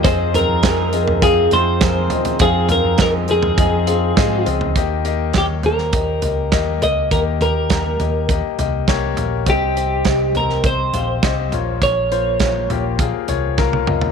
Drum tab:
HH |x-x-x-x-x-x-x-xx|x-x-x-x-x-x-x-x-|x-x-x-x-x-x-x-x-|x-x-x-x-x-x-x-x-|
SD |----o-------o---|----o-------o---|----o--o----o---|----o-------o---|
T1 |----------------|----------------|----------------|----------------|
T2 |----------------|----------------|----------------|----------------|
FT |--o----o------oo|--o----o-------o|------o---o---o-|--o---o---o---o-|
BD |o---o---o---o---|o---o---o---o---|o---o---o---o---|o---o---o---o---|

HH |x-x-x-x-x-x-x-x-|x-x-x-x-x-x-----|
SD |----o--o----o---|----o-------o---|
T1 |----------------|-------------o--|
T2 |----------------|--------------o-|
FT |------o---o---o-|------o---o----o|
BD |o---o---o---o---|o---o---o---o---|